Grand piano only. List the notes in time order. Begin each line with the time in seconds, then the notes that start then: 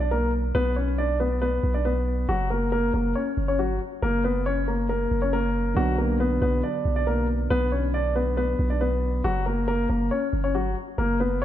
0.00 D4 D5
0.11 A#3 A#4
0.55 B3 B4
0.76 C#4 C#5
0.98 D4 D5
1.20 B3 B4
1.42 B3 B4
1.74 D4 D5
1.85 B3 B4
2.29 F#3 F#4
2.50 A#3 A#4
2.72 A#3 A#4
2.94 A#3 A#4
3.15 C#4 C#5
3.48 C#4 C#5
3.59 F#3 F#4
4.02 A#3 A#4
4.24 B3 B4
4.46 C#4 C#5
4.68 A#3 A#4
4.89 A#3 A#4
5.22 C#4 C#5
5.33 A#3 A#4
5.77 F#3 F#4
5.98 A#3 A#4
6.20 B3 B4
6.42 B3 B4
6.63 D4 D5
6.96 D4 D5
7.07 A#3 A#4
7.50 B3 B4
7.72 C#4 C#5
7.94 D4 D5
8.16 B3 B4
8.37 B3 B4
8.70 D4 D5
8.81 B3 B4
9.24 F#3 F#4
9.46 A#3 A#4
9.68 A#3 A#4
9.90 A#3 A#4
10.11 C#4 C#5
10.44 C#4 C#5
10.55 F#3 F#4
10.98 A#3 A#4
11.20 B3 B4
11.42 C#5